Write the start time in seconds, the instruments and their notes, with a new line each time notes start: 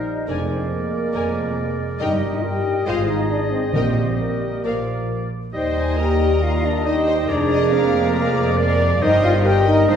Already playing: bassoon G3, french horn section D#4, oboe A#4, clarinet C5, flute section D#5
0.27 double bass section F1, cello section F2, bassoon G#3, french horn section D4, clarinet A#4, viola section A#4, violin section D5 G#5, flute section D5, oboe D5
0.49 french horn section C4, flute section C5
0.71 french horn section A#3, flute section A#4
1.12 double bass section F1, cello section F2, viola section A#4, violin section D5 G#5
1.99 double bass section G1, cello section G2, bassoon G3, french horn section D#4, viola section A#4, violin section D#5 G5, oboe D#5, flute section D#5
2.43 french horn section G4, clarinet A#4, flute section G5
2.86 double bass section G#1, cello section G#2, bassoon G#3, french horn section F4, clarinet G#4, viola section C5, violin section D#5 F5, flute section F5
3.08 french horn section D#4, flute section D#5
3.30 french horn section D4, flute section D5
3.51 french horn section C4, flute section C5
3.73 double bass section A#1, timpani A#2, cello section A#2, bassoon G3, french horn section C4, clarinet G4, viola section A#4, flute section C5, violin section D#5 G5
4.19 french horn section A#3, flute section A#4
4.64 double bass section A#1, cello section A#2, bassoon F3, viola section A#4, violin section D5 F5, oboe D5
5.53 double bass section D#2, cello section D#2, bassoon G3, french horn section D#4, viola section C5, clarinet C5, oboe D#5, flute section D#5, violin section D#5 G5
5.78 violin section G#5
5.98 bassoon G3, french horn section G4, viola section A#4, clarinet A#4, oboe D#5, flute section G5, violin section A#5
6.20 viola section A#4
6.44 french horn section F4, flute section F5
6.65 french horn section D4, flute section D5
6.85 bassoon G3, french horn section D#4, clarinet G4, viola section C5, oboe D#5, violin section D#5 G5, flute section D#5
7.08 violin section C5
7.21 french horn section D#4
7.27 double bass section F1, cello section F2, bassoon G#3, french horn section D4, clarinet G#4, viola section A#4, oboe D5, violin section D5 A#5, flute section D5
7.51 violin section D#5
7.71 bassoon G#3, french horn section A#3, flute section A#4, oboe D5, violin section F5 A#5
8.14 viola section G#4, clarinet A#4, violin section F5
8.57 viola section A#4, clarinet D5, violin section D5 F5
9.01 double bass section G1, cello section G2, bassoon G3, french horn section D#4, viola section A#4, clarinet C5, oboe D#5, flute section D#5, violin section D#5 G5
9.23 french horn section F4, flute section F5
9.44 bassoon G3, french horn section G4, viola section A#4, clarinet A#4, oboe D#5, violin section D#5 G5, flute section G5
9.67 french horn section D#4, flute section D#5
9.88 double bass section G#1, cello section G#2, bassoon F3, french horn section D4, viola section C5, clarinet C5, flute section D5, oboe D#5, violin section D#5 F5